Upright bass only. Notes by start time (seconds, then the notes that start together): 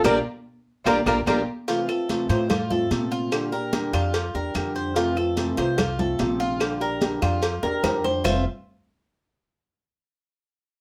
0.04 A#1
0.86 A#1
1.06 A#1
1.26 A#1
2.29 A2
2.91 A#2
3.93 F2
4.35 E2
4.55 F2
5.58 C2
6.19 A#1
7.22 F2
7.63 E2
7.83 F2
8.25 F1